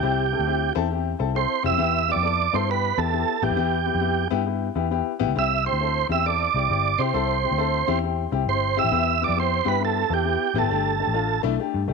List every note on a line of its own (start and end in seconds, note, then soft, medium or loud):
0.00 0.33 C2 loud
0.00 0.22 C4 loud
0.00 0.22 E4 loud
0.00 0.73 G4 medium
0.00 0.22 G4 loud
0.32 0.42 C4 medium
0.32 0.42 E4 medium
0.32 0.42 A4 medium
0.39 0.70 D2 medium
0.46 0.66 C4 medium
0.46 0.66 E4 medium
0.46 0.66 G4 loud
0.75 1.13 E2 loud
0.75 0.85 C4 loud
0.75 0.86 E4 loud
0.75 0.86 A4 loud
0.90 1.10 C4 medium
0.90 1.10 E4 medium
0.90 1.10 G4 loud
1.19 1.45 C2 loud
1.19 1.30 C4 loud
1.19 1.30 E4 medium
1.19 1.30 A4 loud
1.34 1.54 C4 medium
1.34 1.55 E4 medium
1.34 1.55 A4 medium
1.34 1.63 C5 loud
1.63 1.71 F1 loud
1.63 1.74 C4 loud
1.63 1.74 E4 loud
1.63 1.75 G4 loud
1.63 2.11 E5 loud
1.71 1.78 F2 loud
1.78 2.10 E2 loud
1.78 1.98 B3 loud
1.78 1.99 E4 medium
1.78 1.99 G4 loud
2.08 2.19 B3 medium
2.08 2.19 E4 medium
2.08 2.19 G4 medium
2.08 2.56 D5 loud
2.16 2.47 F2 medium
2.22 2.43 B3 medium
2.22 2.43 E4 medium
2.22 2.43 A4 medium
2.53 2.91 G2 medium
2.53 2.63 B3 medium
2.53 2.63 E4 medium
2.53 2.64 A4 loud
2.53 2.70 C5 loud
2.67 2.88 B3 medium
2.67 2.88 E4 medium
2.67 2.88 G4 medium
2.67 3.00 B4 loud
2.97 3.23 E2 loud
2.97 3.08 B3 medium
2.97 3.08 E4 medium
2.97 3.08 G4 medium
2.97 3.44 A4 loud
3.12 3.32 B3 medium
3.12 3.33 E4 medium
3.12 3.33 G4 medium
3.42 3.49 A1 loud
3.42 3.52 B3 loud
3.42 3.53 E4 medium
3.42 3.53 G4 loud
3.42 4.28 G4 medium
3.50 3.57 F2 loud
3.56 3.89 E2 loud
3.56 3.76 B3 loud
3.56 3.77 E4 medium
3.56 3.77 G4 loud
3.86 3.97 B3 medium
3.86 3.97 E4 medium
3.86 3.97 G4 medium
3.95 4.25 F2 medium
4.01 4.21 B3 medium
4.01 4.21 E4 medium
4.01 4.21 G4 medium
4.30 4.69 G2 medium
4.30 4.41 B3 loud
4.30 4.41 E4 loud
4.30 4.41 G4 loud
4.46 4.66 B3 medium
4.46 4.66 E4 medium
4.46 4.66 G4 medium
4.75 5.01 E2 loud
4.75 4.86 B3 loud
4.75 4.86 E4 medium
4.75 4.86 G4 loud
4.90 5.10 B3 medium
4.90 5.11 E4 medium
4.90 5.11 G4 loud
5.19 5.27 A1 loud
5.19 5.30 B3 loud
5.19 5.30 E4 loud
5.19 5.31 G4 loud
5.28 5.35 C#2 medium
5.35 5.67 C2 loud
5.35 5.55 C4 loud
5.35 5.55 E4 medium
5.35 5.55 G4 loud
5.35 5.65 E5 loud
5.65 5.75 C4 medium
5.65 5.75 E4 medium
5.65 5.75 G4 medium
5.65 6.07 C5 loud
5.73 6.03 D2 medium
5.80 6.00 C4 medium
5.80 6.00 E4 medium
5.80 6.00 A4 medium
6.09 6.47 E2 medium
6.09 6.20 C4 medium
6.09 6.20 E4 medium
6.09 6.20 G4 loud
6.09 6.26 E5 loud
6.25 6.44 C4 medium
6.25 6.45 E4 medium
6.25 6.45 A4 medium
6.25 7.02 D5 medium
6.54 6.67 C2 medium
6.54 6.65 C4 medium
6.54 6.65 E4 medium
6.54 6.65 G4 medium
6.69 6.94 G1 loud
6.69 6.89 C4 medium
6.69 6.89 E4 medium
6.69 6.89 G4 medium
6.99 7.11 C3 loud
6.99 7.09 C4 loud
6.99 7.09 E4 medium
6.99 7.09 G4 loud
6.99 7.99 C5 medium
7.13 7.45 C2 loud
7.13 7.33 C4 loud
7.13 7.34 E4 loud
7.13 7.34 A4 loud
7.43 7.53 C4 medium
7.43 7.53 E4 medium
7.43 7.54 G4 medium
7.51 7.82 D2 medium
7.58 7.78 C4 medium
7.58 7.78 E4 medium
7.58 7.78 A4 loud
7.87 8.25 E2 medium
7.87 7.98 C4 loud
7.87 7.98 E4 loud
7.87 7.98 G4 loud
8.03 8.23 C4 medium
8.03 8.23 E4 medium
8.03 8.23 G4 medium
8.31 8.45 C2 medium
8.31 8.42 C4 medium
8.31 8.42 E4 medium
8.31 8.43 G4 loud
8.47 8.78 G1 loud
8.47 8.67 C4 medium
8.47 8.68 E4 medium
8.47 8.68 G4 medium
8.47 8.79 C5 loud
8.76 8.87 C4 loud
8.76 8.87 E4 medium
8.76 8.87 G4 loud
8.76 9.23 E5 loud
8.84 8.91 A1 loud
8.91 9.23 E2 loud
8.91 9.11 B3 loud
8.91 9.11 E4 loud
8.91 9.12 G4 loud
9.21 9.31 B3 medium
9.21 9.32 E4 medium
9.21 9.32 G4 medium
9.21 9.38 D5 loud
9.29 9.60 F2 loud
9.36 9.56 B3 medium
9.36 9.56 E4 medium
9.36 9.56 G4 medium
9.36 9.68 C5 loud
9.65 10.03 G2 medium
9.65 9.75 B3 loud
9.65 9.76 E4 medium
9.65 9.76 G4 loud
9.65 9.83 B4 loud
9.80 10.00 B3 medium
9.80 10.00 E4 medium
9.80 10.01 G4 medium
9.85 10.13 A4 loud
10.09 10.35 E2 loud
10.09 10.20 B3 medium
10.09 10.20 E4 medium
10.09 10.21 A4 medium
10.14 10.58 G4 loud
10.24 10.45 B3 medium
10.24 10.45 E4 medium
10.24 10.45 G4 medium
10.54 10.61 A1 loud
10.54 10.65 B3 loud
10.54 10.65 E4 medium
10.54 10.66 G4 loud
10.58 10.69 G#1 medium
10.58 11.42 A4 medium
10.69 11.01 G1 loud
10.69 10.89 A3 loud
10.69 10.90 D4 loud
10.69 10.90 G4 loud
10.99 11.10 A3 medium
10.99 11.10 D4 medium
10.99 11.10 G4 medium
11.07 11.38 A1 medium
11.14 11.34 A3 medium
11.14 11.34 D4 medium
11.14 11.34 F4 loud
11.43 11.57 B1 medium
11.43 11.54 A3 loud
11.43 11.54 D4 loud
11.43 11.54 E4 loud
11.59 11.79 A3 medium
11.59 11.79 D4 medium
11.59 11.79 G4 loud
11.74 11.87 G2 loud
11.88 11.93 C2 medium
11.88 11.93 A3 medium
11.88 11.93 D4 medium
11.88 11.93 G4 loud